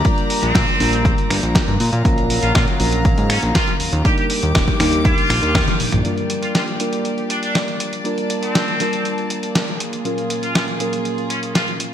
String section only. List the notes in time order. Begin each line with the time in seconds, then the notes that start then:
Already playing: G4 D5 A#5
1.80 F#3 F5 A#5
4.05 G4 D6
6.04 A#3 G4 D5
8.05 A5
9.80 F4 G#4